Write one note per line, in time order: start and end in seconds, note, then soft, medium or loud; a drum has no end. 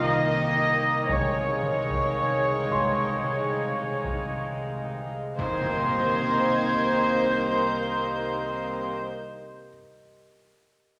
0.00 1.06 C2 loud
0.00 0.54 C3 medium
0.00 1.08 D#3 medium
0.00 1.10 D#3 medium
0.00 1.08 A#3 medium
0.00 1.08 D#4 medium
0.00 1.10 A#4 medium
0.00 2.67 A#4 soft
0.00 1.08 D#5 medium
0.00 1.09 D#5 medium
0.00 1.08 D#5 loud
0.00 1.10 G5 medium
0.00 2.67 C6 medium
0.55 1.08 C3 medium
1.09 5.14 C2 medium
1.09 1.62 C3 medium
1.09 4.31 C#3 medium
1.09 5.03 D#3 medium
1.09 5.18 G#3 medium
1.09 5.06 G#3 medium
1.09 5.14 D#4 medium
1.09 5.39 G#4 soft
1.09 4.27 C#5 medium
1.09 4.31 C#5 medium
1.09 5.34 D#5 soft
1.09 5.39 F5 soft
1.09 taiko loud
1.63 2.16 C3 soft
1.63 taiko mid medium
1.90 taiko medium
2.17 2.69 C3 medium
2.70 3.22 C3 soft
2.70 5.35 C6 medium
2.70 taiko medium
3.23 3.75 C3 medium
3.77 4.29 C3 medium
4.04 taiko medium
4.30 4.83 C3 soft
4.84 5.42 C3 soft
5.38 8.91 C2 medium
5.38 8.91 D#3 medium
5.38 8.91 A#3 medium
5.38 8.91 C4 medium
5.38 8.91 D#4 medium
5.38 8.93 G4 medium
5.38 8.93 A#4 medium
5.38 8.91 C5 loud
5.38 8.91 C5 medium
5.38 8.93 D#5 medium
5.38 7.38 G6 medium
5.38 7.38 G#6 medium
5.38 impact medium
7.38 8.03 G6 medium